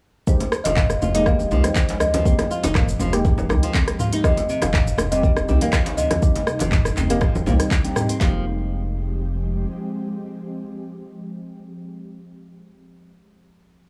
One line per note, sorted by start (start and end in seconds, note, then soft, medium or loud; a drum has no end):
0.27 4.20 F3 medium
0.27 4.20 G#3 medium
0.27 0.39 G#3 medium
0.27 0.39 A#3 medium
0.27 8.17 C4 medium
0.27 0.39 D#4 medium
0.27 4.20 G4 medium
0.27 0.39 G4 medium
0.27 0.63 C5 medium
0.27 kick loud
0.27 shaker medium
0.40 closed hi-hat soft
0.40 djembe slap medium
0.40 low conga loud
0.40 shaker medium
0.52 cross-stick loud
0.52 shaker medium
0.64 0.96 F1 loud
0.64 0.76 F3 medium
0.64 0.77 D#5 loud
0.64 closed hi-hat medium
0.64 djembe slap medium
0.64 high conga loud
0.64 shaker medium
0.77 0.84 C4 medium
0.77 1.12 F5 loud
0.77 kick loud
0.77 clap medium
0.77 mid tom medium
0.77 shaker medium
0.90 cross-stick medium
0.90 high conga medium
0.90 shaker loud
1.02 1.33 F1 loud
1.02 1.14 F4 medium
1.02 djembe tone medium
1.02 low conga loud
1.02 shaker medium
1.15 1.49 G#3 loud
1.15 1.49 A#3 medium
1.15 1.26 D#4 loud
1.15 1.49 D#4 medium
1.15 1.49 G4 loud
1.15 1.27 D#5 loud
1.15 closed hi-hat medium
1.15 shaker medium
1.26 1.39 A#3 medium
1.26 1.62 F5 loud
1.26 kick loud
1.26 cross-stick medium
1.26 shaker medium
1.39 1.53 D#1 medium
1.39 djembe tone medium
1.39 shaker medium
1.51 1.60 C2 medium
1.51 1.63 F3 medium
1.51 2.23 G#3 medium
1.51 2.23 A#3 medium
1.51 2.23 D#4 medium
1.51 2.23 G4 medium
1.51 djembe tone medium
1.51 low conga loud
1.51 shaker medium
1.64 1.98 C5 medium
1.64 cross-stick medium
1.64 closed hi-hat medium
1.64 high conga medium
1.64 shaker medium
1.76 kick loud
1.76 clap loud
1.76 shaker loud
1.89 closed hi-hat soft
1.89 djembe slap loud
1.89 shaker medium
2.00 3.45 D#5 loud
2.00 cross-stick loud
2.00 high conga medium
2.00 djembe bass medium
2.00 shaker medium
2.14 2.25 F3 medium
2.14 closed hi-hat medium
2.14 high conga loud
2.14 djembe tone loud
2.14 shaker medium
2.25 2.37 G#3 medium
2.25 2.37 A#3 medium
2.25 2.33 C4 medium
2.25 2.37 D#4 medium
2.25 2.37 G4 medium
2.25 kick loud
2.25 shaker loud
2.38 cross-stick medium
2.38 closed hi-hat soft
2.38 djembe slap medium
2.38 low conga loud
2.38 shaker medium
2.51 2.63 F4 medium
2.51 shaker medium
2.63 2.94 F1 loud
2.63 2.75 D#4 loud
2.63 closed hi-hat medium
2.63 djembe slap medium
2.63 high conga loud
2.63 shaker loud
2.75 2.87 A#3 medium
2.75 kick loud
2.75 cross-stick medium
2.75 clap medium
2.75 mid tom medium
2.75 shaker medium
2.88 high conga medium
2.88 shaker loud
2.99 3.31 F1 loud
2.99 3.12 F3 medium
2.99 djembe tone medium
2.99 low conga loud
2.99 djembe bass medium
2.99 shaker loud
3.13 3.47 G#3 loud
3.13 3.47 A#3 medium
3.13 3.47 D#4 medium
3.13 3.47 G4 loud
3.13 cross-stick medium
3.13 closed hi-hat medium
3.13 shaker medium
3.25 kick loud
3.25 mid tom medium
3.25 djembe slap medium
3.25 shaker medium
3.38 3.51 D#1 medium
3.38 high conga loud
3.38 shaker medium
3.49 3.59 C2 medium
3.49 4.21 G#3 medium
3.49 4.21 A#3 medium
3.49 4.21 D#4 medium
3.49 4.21 G4 medium
3.49 cross-stick loud
3.49 high conga medium
3.49 djembe tone loud
3.49 djembe bass medium
3.49 low conga loud
3.49 shaker medium
3.63 3.74 F3 medium
3.63 closed hi-hat medium
3.63 shaker medium
3.74 3.82 C4 medium
3.74 kick loud
3.74 clap loud
3.74 djembe tone medium
3.74 shaker loud
3.88 cross-stick medium
3.88 closed hi-hat soft
3.88 djembe tone medium
3.88 shaker medium
3.99 4.11 F4 medium
3.99 mid tom medium
3.99 djembe tone medium
3.99 high conga medium
3.99 shaker medium
4.13 4.24 D#4 loud
4.13 closed hi-hat medium
4.13 shaker medium
4.24 8.17 C3 medium
4.24 4.36 F3 medium
4.24 8.17 G3 medium
4.24 4.36 G3 medium
4.24 4.36 C4 medium
4.24 4.36 D#4 medium
4.24 8.17 D#4 medium
4.24 4.36 G4 medium
4.24 4.63 D#5 loud
4.24 kick loud
4.24 cross-stick loud
4.24 shaker loud
4.37 closed hi-hat soft
4.37 djembe slap medium
4.37 low conga loud
4.37 shaker medium
4.49 4.61 C3 medium
4.49 shaker medium
4.62 4.93 F1 loud
4.62 5.13 F5 loud
4.62 cross-stick medium
4.62 closed hi-hat medium
4.62 djembe slap medium
4.62 high conga loud
4.62 shaker loud
4.74 kick loud
4.74 clap medium
4.74 mid tom medium
4.74 shaker medium
4.87 high conga medium
4.87 shaker loud
4.98 5.30 F1 loud
4.98 cross-stick loud
4.98 djembe tone medium
4.98 low conga loud
4.98 shaker loud
5.12 5.23 C3 medium
5.12 5.45 G3 loud
5.12 5.45 C4 medium
5.12 5.45 D#4 loud
5.12 5.45 G4 loud
5.12 5.69 D#5 loud
5.12 closed hi-hat medium
5.12 shaker medium
5.23 5.31 G3 medium
5.23 kick loud
5.23 shaker medium
5.36 5.50 D#1 medium
5.36 cross-stick medium
5.36 djembe tone medium
5.36 shaker medium
5.48 5.57 C2 medium
5.48 6.20 G3 medium
5.48 6.20 C4 medium
5.48 5.60 C4 medium
5.48 6.20 D#4 medium
5.48 6.20 G4 medium
5.48 djembe tone loud
5.48 low conga loud
5.48 shaker medium
5.61 5.72 A#3 loud
5.61 closed hi-hat medium
5.61 high conga medium
5.61 shaker medium
5.73 5.85 F3 medium
5.73 5.96 F5 loud
5.73 kick loud
5.73 cross-stick loud
5.73 clap loud
5.73 shaker loud
5.86 closed hi-hat soft
5.86 djembe slap loud
5.86 shaker medium
5.97 6.10 C3 medium
5.97 6.68 D#5 loud
5.97 high conga medium
5.97 djembe bass medium
5.97 shaker loud
6.11 cross-stick medium
6.11 closed hi-hat medium
6.11 djembe tone loud
6.11 high conga loud
6.11 shaker medium
6.22 6.34 G3 medium
6.22 6.34 C4 medium
6.22 6.34 D#4 medium
6.22 6.34 G4 medium
6.22 kick loud
6.22 shaker loud
6.35 closed hi-hat soft
6.35 djembe slap medium
6.35 low conga loud
6.35 shaker medium
6.47 cross-stick medium
6.47 shaker medium
6.59 6.91 F1 loud
6.59 6.72 C3 medium
6.59 closed hi-hat medium
6.59 djembe slap medium
6.59 high conga loud
6.59 shaker loud
6.72 6.79 G3 medium
6.72 kick loud
6.72 clap medium
6.72 mid tom loud
6.72 shaker medium
6.85 cross-stick medium
6.85 high conga medium
6.85 shaker loud
6.96 7.29 F1 loud
6.96 7.09 C4 medium
6.96 clap soft
6.96 djembe tone medium
6.96 djembe bass medium
6.96 low conga loud
6.96 shaker loud
7.10 7.44 G3 loud
7.10 7.21 A#3 loud
7.10 7.44 C4 medium
7.10 7.44 D#4 medium
7.10 7.44 G4 loud
7.10 closed hi-hat medium
7.10 shaker medium
7.21 7.34 F3 medium
7.21 kick loud
7.21 cross-stick medium
7.21 mid tom medium
7.21 djembe slap medium
7.21 shaker medium
7.35 7.48 D#1 loud
7.35 high conga loud
7.35 shaker medium
7.46 7.56 C2 medium
7.46 7.54 A#2 loud
7.46 7.81 G3 loud
7.46 7.81 C4 medium
7.46 7.81 D#4 medium
7.46 7.81 G4 loud
7.46 djembe tone medium
7.46 high conga medium
7.46 djembe bass medium
7.46 low conga loud
7.46 shaker medium
7.60 cross-stick medium
7.60 closed hi-hat medium
7.60 shaker medium
7.71 kick loud
7.71 clap loud
7.71 djembe tone medium
7.71 shaker loud
7.84 7.94 G3 medium
7.84 7.94 C4 medium
7.84 7.94 D#4 medium
7.84 7.94 G4 loud
7.84 closed hi-hat soft
7.84 djembe tone medium
7.84 shaker medium
7.95 8.08 G3 medium
7.95 8.08 C4 medium
7.95 8.08 D#4 medium
7.95 8.08 G4 medium
7.95 cross-stick medium
7.95 mid tom medium
7.95 djembe tone medium
7.95 high conga medium
7.95 shaker loud
8.09 8.16 C4 medium
8.09 closed hi-hat medium
8.09 shaker medium
8.20 9.66 F1 loud
8.20 11.97 F3 medium
8.20 8.44 F3 medium
8.20 11.98 G#3 medium
8.20 11.98 A#3 medium
8.20 11.98 C4 medium
8.20 11.98 D#4 medium
8.20 11.98 G4 loud
8.20 11.98 G4 medium
8.20 11.97 F5 medium
8.20 kick loud
8.20 snare loud
8.20 clap medium